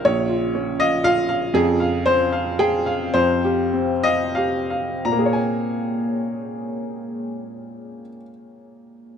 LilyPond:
<<
  \new Staff \with { instrumentName = "Upright piano" } { \time 3/4 \key bes \dorian \tempo 4 = 96 << { des''4. ees''8 f''4 | aes'4 c''4 aes'4 | c''4. ees''8 f''4 | <bes, bes aes' des'' aes'' bes''>2.~ |
<bes, bes aes' des'' aes'' bes''>2. | } \\ { <bes,, f''>8 f'8 des'8 f''8 f'8 f''8 | f,8 f''8 c'8 f''8 g''8 f''8 | f,8 g'8 c'8 f''8 g'8 f''8 | r2. |
r2. | } >> }
  \new Staff \with { instrumentName = "Ambient pad" } { \time 3/4 \key bes \dorian << { f''2.~ | f''2.~ | f''2. | des''2.~ |
des''2. | } \\ { <des' f'>2. | <c' g''>2.~ | <c' g''>2. | <bes aes'>2.~ |
<bes aes'>2. | } >> }
>>